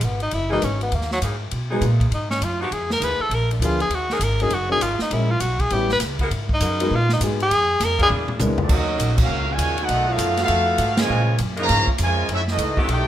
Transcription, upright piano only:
0.50 E3 G#3 A#3 D#4 F#4
1.71 F#3 G#3 B3 D#4 G#4
3.62 F3 A#3 B3 D4 G#4
4.41 F#3 A#3 C#4 D#4 A#4
4.69 F#3 A#3 C#4 D#4 A#4
5.11 G#3 A#3 C#4 E4 A#4
5.71 G3 B3 C#4 E4 G4
6.81 G#3 B3 D#4 F#4 A#4
7.21 G#3 B3 D#4 F#4 G#4
8.41 G#3 B3 D4 E4 A#4

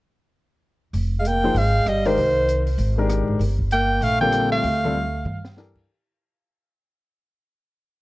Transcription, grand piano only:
1.44 F3 A#3 D#4 G#4 C5
2.05 D#3 G#3 D4 G4 A#4
2.97 D#3 G#3 D4 G4 A#4
4.21 D3 G3 C4 F4 A4
4.84 D3 G3 C4 F4 A4
5.57 E3 D4 G4 A4 A#4

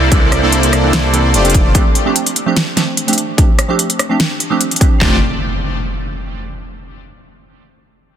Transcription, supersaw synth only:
0.12 A#3 E4 A4 C5 D5
0.43 A#3 E4 A4 C5 D5
1.34 A3 F4 G4 C5 D5
5.01 A3 F4 G4 C5 D5

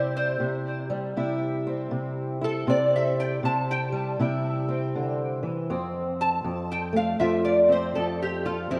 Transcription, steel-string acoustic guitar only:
Already playing: C3 G3 C4 E4
0.40 C3
0.90 G3
1.17 C3 E4
1.67 C4
1.91 C3
2.41 E4
2.67 C3 C4
3.43 C3
3.92 G3
4.19 C3 E4
4.69 C4
4.96 D3
5.43 E3
5.70 F2 C4
6.44 F2
6.93 A3
7.19 F2 F4
7.69 C4
7.96 F2
8.46 F4
8.70 F2 C4

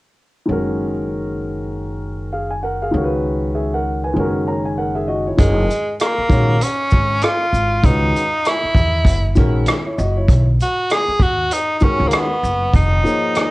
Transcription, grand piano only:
0.46 D#3 G#3 C#4
0.50 F#4 A#4
2.32 G#4 F5
2.51 G#5
2.63 A#4 F#5
2.82 G#4 F5
2.91 D#3 G#3 C#4
2.96 F#4 A#4
3.04 B4
3.55 G#4 E5
3.74 A#4 F#5
4.04 B4 G#5
4.14 D#3 G#3 C#4
4.19 F#4 A#4
4.48 C#5 A#5
4.66 G#5
4.78 A#4 F#5
4.95 G#4 E5
5.08 F#4 D#5
5.27 E4 C#5
5.37 D#3 G#3 C#4 F#4 A#4
6.29 D#3 G#3 C#4 F#4 C#5
7.83 D#3 G#3 C#4 F#4 B4
9.35 D#3 G#3 C#4 F#4 A#4
9.86 E4 C#5
9.98 F#4 D#5
10.17 E4 C#5
11.81 D#3 G#3 C#4 F#4 A#4
13.03 F3 A#3 D#4 G#4 C#5

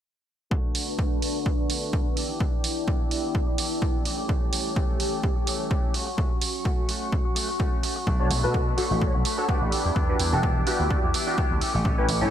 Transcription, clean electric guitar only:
0.51 A3 D4 F#4
0.98 A3 D4 F#4
1.21 A3 D4 F#4
1.58 D4 F#4
1.69 A3 D4 F#4
1.92 A3
2.16 E3 B3 D4 G4
2.29 B3 D4 G4
2.39 E3 B3 D4
2.53 B3 D4 G4
2.87 E3 B3 D4 G4
3.10 E3 B3 D4 G4
3.47 B3 D4 G4
3.57 E3 B3 D4 G4
3.81 E3 B3 D4 G4
4.04 E3 A3 C#4 G4
4.18 A3 C#4 G4
4.28 E3 C#4 G4
4.75 E3 A3 C#4 G4
4.99 E3 A3 C#4 G4
5.36 A3 C#4 G4
5.46 E3 A3 C#4 G4
5.70 E3 A3 C#4 G4
5.93 A3 C#4 F#4
6.07 C#4 F#4
6.17 A3 C#4 F#4
6.30 C#4 F#4
6.65 A3 C#4 F#4
6.88 A3 C#4 F#4
7.25 C#4 F#4
7.35 A3 C#4 F#4
7.49 C#4 F#4
7.59 A3 C#4 F#4
7.83 A3 C#4 F#4
7.96 C#4 F#4
8.07 A3 D4 F#4
8.54 A3 D4 F#4
8.77 A3 D4 F#4
9.14 D4 F#4
9.24 A3 D4 F#4
9.38 D4 F#4
9.48 A3 D4 F#4
9.71 E3 B3 D4 G4
9.85 B3 D4 G4
9.95 E3 B3 D4 G4
10.43 E3 B3 D4 G4
10.66 E3 B3 D4 G4
11.03 B3 D4 G4
11.13 E3 B3 D4 G4
11.37 E3 B3 D4 G4
11.61 E3 A3 C#4 G4
11.74 A3 C#4 G4
11.85 E3 A3 C#4 G4
11.97 A3 C#4 G4

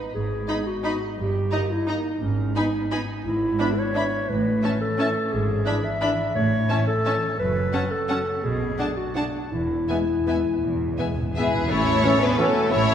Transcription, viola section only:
0.48 D#4
0.83 D#4
1.52 D#4
1.88 D#4
2.55 D#4
2.92 D#4
3.59 D4
3.94 D4
4.63 C#4
4.98 C#4
5.66 D4
6.02 D4
6.70 C#4
7.06 C#4
7.74 C#4
8.09 C#4
8.79 D4
9.16 D4
9.89 B3
10.27 B3
10.99 B3
11.37 B3
12.04 E3 C#4
12.39 E3 C#4

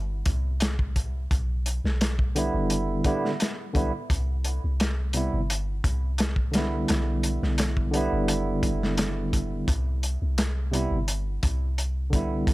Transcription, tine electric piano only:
2.35 D3 G3 B3 E4
3.05 D3 G3 B3 E4
3.74 D3 G3 B3 E4
5.14 C3 G3 B3 E4
6.51 D3 G3
6.56 B3 E4
7.91 D3 G3
7.95 B3 E4
10.71 C3 G3 B3 E4
12.10 D3 G3
12.14 B3 E4

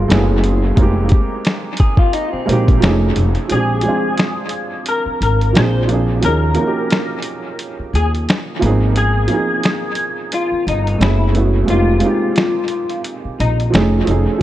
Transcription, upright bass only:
0.10 F#1
0.77 F1
2.33 muted upright bass stroke
2.48 A#1
2.82 F1
3.16 F1
3.50 A#1
5.06 muted upright bass stroke
5.21 G#1
5.55 A#1
6.23 D#2
7.79 muted upright bass stroke
7.93 D#2
8.62 G#1
10.52 muted upright bass stroke
10.67 G1
11.01 F#1
11.69 F1
13.25 muted upright bass stroke
13.40 A#1
13.73 F1
14.07 F1

